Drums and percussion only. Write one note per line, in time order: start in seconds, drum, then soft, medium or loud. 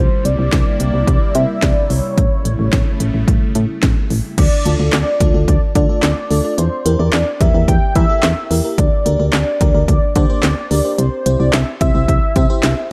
0.25 closed hi-hat medium
0.52 kick loud
0.52 snare loud
0.52 closed hi-hat medium
0.80 closed hi-hat medium
1.07 kick loud
1.07 closed hi-hat medium
1.35 closed hi-hat medium
1.62 kick loud
1.62 snare loud
1.62 closed hi-hat medium
1.90 open hi-hat medium
2.18 kick loud
2.18 closed hi-hat medium
2.45 closed hi-hat medium
2.73 kick loud
2.73 snare loud
2.73 closed hi-hat medium
3.00 closed hi-hat medium
3.28 kick loud
3.28 closed hi-hat medium
3.55 closed hi-hat medium
3.83 kick loud
3.83 snare loud
3.83 closed hi-hat medium
4.10 open hi-hat medium
4.38 kick loud
4.38 closed hi-hat medium
4.38 crash loud
4.65 closed hi-hat medium
4.93 snare loud
4.93 clap loud
4.93 closed hi-hat medium
5.20 kick loud
5.20 closed hi-hat medium
5.48 kick loud
5.48 closed hi-hat medium
5.75 kick loud
5.75 closed hi-hat medium
6.03 snare loud
6.03 clap loud
6.03 closed hi-hat medium
6.31 open hi-hat medium
6.58 closed hi-hat medium
6.86 closed hi-hat medium
7.13 snare loud
7.13 clap loud
7.13 closed hi-hat medium
7.41 kick loud
7.41 closed hi-hat medium
7.68 kick loud
7.68 closed hi-hat medium
7.95 kick medium
7.95 closed hi-hat medium
8.23 snare loud
8.23 clap medium
8.23 closed hi-hat medium
8.51 open hi-hat medium
8.78 kick loud
8.78 closed hi-hat medium
9.06 closed hi-hat medium
9.33 snare loud
9.33 clap loud
9.33 closed hi-hat medium
9.61 kick loud
9.61 closed hi-hat medium
9.88 kick medium
9.88 closed hi-hat medium
10.16 kick loud
10.16 closed hi-hat medium
10.43 snare loud
10.43 clap medium
10.43 closed hi-hat medium
10.71 open hi-hat medium
10.98 closed hi-hat medium
11.26 closed hi-hat medium
11.53 snare loud
11.53 clap loud
11.53 closed hi-hat medium
11.81 kick loud
11.81 closed hi-hat medium
12.08 kick medium
12.08 closed hi-hat medium
12.36 kick loud
12.36 closed hi-hat medium
12.63 snare loud
12.63 clap medium
12.63 closed hi-hat medium